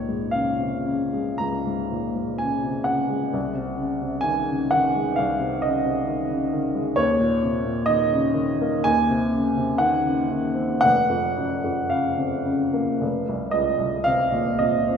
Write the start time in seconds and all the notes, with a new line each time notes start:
Already playing: C#2 G#2 A#2 C#5
0.09 G#2
0.31 C#3 F5
0.59 C3
0.85 C#3
1.13 G#3
1.38 C#2 A#5
1.67 G#2
1.92 A#2
2.16 G#2
2.38 C#3 G#5
2.64 C3
2.84 C#3 F#5
3.10 G#3
3.33 C2
3.54 C3
3.77 C#3
4.01 C3
4.21 D#3 G#5
4.47 C#3
4.71 D#3 F#5
4.95 G#3
5.16 C2 F5
5.40 C3
5.62 C#3 D#5
5.85 C3
6.08 D#3
6.29 C#3
6.53 D#3
6.75 G#3
6.96 D#2 C#5
7.20 A#2
7.43 C3
7.65 A#2
7.86 D#3 D#5
8.12 C#3
8.34 D#3
8.61 A#3
8.84 D#2 G#5
9.09 C3
9.32 C#3
9.56 C3
9.78 D#3 F#5
10.05 C#3
10.31 D#3
10.54 C4
10.81 F1 F#5
11.10 F2
11.37 F#2
11.64 F2
11.90 C#3 F5
12.18 C3
12.45 C#3
12.74 A#3
13.01 F1
13.29 C2
13.51 C#2 D#5
13.79 C2
14.04 C3 F5
14.32 A#2
14.59 C3 D#5
14.88 C4